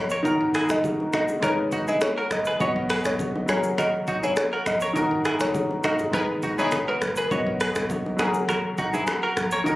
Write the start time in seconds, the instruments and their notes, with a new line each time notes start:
Already playing: 808-style bass A#1, grand piano F#3 F#4 G#4 A#4
0.10 clean electric guitar A#4 C#5, shaker
0.23 808-style bass D#1, grand piano D#3 D#4 F#4, clean electric guitar F#4 A#4, kick, low conga, shaker
0.28 grand piano A#4
0.41 mid tom
0.54 clean electric guitar E4 G#4, finger snap, cross-stick, open hi-hat, shaker
0.69 808-style bass F#1, synth pluck D#5, finger snap, cross-stick, shaker
0.84 kick, high bongo, low conga, shaker
1.00 low bongo
1.13 clean electric guitar D#4 F#4, synth pluck D#5, finger snap, kick, cross-stick, low bongo, shaker
1.28 high bongo, shaker
1.40 808-style bass G#1, grand piano G#3 D#4 A#4, clean electric guitar D#4 A#4, synth pluck C#5, finger snap, kick, cross-stick, low conga, shaker
1.45 grand piano B4
1.72 clean electric guitar D#4 F#4, kick, shaker
1.87 808-style bass D#1, clean electric guitar E4 G#4, synth pluck D#5, low bongo, shaker
2.01 synth pluck C#5, finger snap, cross-stick, high bongo, shaker
2.18 clean electric guitar F#4 A#4
2.31 808-style bass F#1, synth pluck D#5, finger snap, cross-stick, shaker
2.45 clean electric guitar G#4 B4, shaker
2.59 808-style bass B1, grand piano B3 F#4 C#5 D#5, clean electric guitar F#4 C#5, kick, low conga, shaker
2.76 mid tom
2.90 clean electric guitar G#4 B4, finger snap, cross-stick, open hi-hat, shaker
3.05 808-style bass B1, synth pluck C#5, finger snap, cross-stick, shaker
3.19 kick, high bongo, low conga, shaker
3.36 low bongo
3.46 808-style bass F#1, grand piano F#3 F#4 G#4, clean electric guitar C#4 G#4, synth pluck C#5, finger snap, cross-stick, low bongo, shaker
3.51 grand piano A#4
3.63 high bongo, shaker
3.78 clean electric guitar F#4 A#4, synth pluck D#5, finger snap, kick, cross-stick, low conga, shaker
4.07 clean electric guitar D#4 F#4, kick, shaker
4.23 808-style bass F#1, clean electric guitar E4 G#4, synth pluck C#5, low bongo, shaker
4.36 synth pluck C#5, finger snap, cross-stick, high bongo, shaker
4.53 clean electric guitar F#4 A#4
4.66 808-style bass A#1, synth pluck D#5, finger snap, cross-stick, shaker
4.80 clean electric guitar A#4 C#5, shaker
4.93 808-style bass D#1, grand piano D#3 D#4 F#4, clean electric guitar F#4 A#4, kick, low conga, shaker
4.98 grand piano A#4
5.11 mid tom
5.25 clean electric guitar E4 G#4, finger snap, cross-stick, shaker
5.40 808-style bass F#1, synth pluck C#5, finger snap, cross-stick, shaker
5.55 kick, high bongo, low conga, shaker
5.71 low bongo
5.84 horn section A#3 D#4 F#4 A#4, clean electric guitar D#4 F#4, synth pluck D#5, finger snap, kick, cross-stick, low bongo, shaker
5.99 mid tom, high bongo, shaker
6.11 808-style bass G#1, grand piano G#3 D#4 A#4, horn section B3 D#4 G#4 B4, clean electric guitar D#4 A#4, synth pluck B4, finger snap, kick, cross-stick, low conga, shaker
6.16 grand piano B4
6.43 clean electric guitar D#4 F#4, kick, shaker
6.58 808-style bass D#1, horn section B3 D#4 G#4 B4, clean electric guitar E4 G#4, synth pluck C#5, low bongo, shaker
6.71 finger snap, kick, cross-stick, high bongo, shaker
6.88 clean electric guitar F#4 A#4, synth pluck B4
7.02 808-style bass F#1, finger snap, cross-stick, shaker
7.16 clean electric guitar G#4 B4, synth pluck A#4, shaker
7.30 808-style bass B1, grand piano B3 F#4 C#5 D#5, clean electric guitar F#4 C#5, kick, low conga, shaker
7.47 mid tom
7.60 clean electric guitar G#4 B4, finger snap, cross-stick, open hi-hat, shaker
7.75 808-style bass B1, finger snap, cross-stick, shaker
7.90 kick, high bongo, low conga, shaker
8.06 low bongo
8.17 808-style bass F#1, grand piano F#3 F#4 G#4, clean electric guitar G#4, finger snap, cross-stick, low bongo, shaker
8.21 clean electric guitar C#4, grand piano A#4
8.34 high bongo, shaker
8.49 clean electric guitar F#4 A#4, finger snap, kick, cross-stick, low conga, shaker
8.78 clean electric guitar D#4 F#4, kick, shaker
8.93 808-style bass F#1, clean electric guitar E4 G#4, low bongo, shaker
9.07 finger snap, cross-stick, high bongo, shaker
9.23 clean electric guitar F#4 A#4
9.37 808-style bass A#1, finger snap, cross-stick, shaker
9.51 clean electric guitar A#4 C#5, shaker
9.64 808-style bass D#1, grand piano D#3 D#4 F#4, clean electric guitar F#4 A#4, kick, low conga, shaker
9.69 grand piano A#4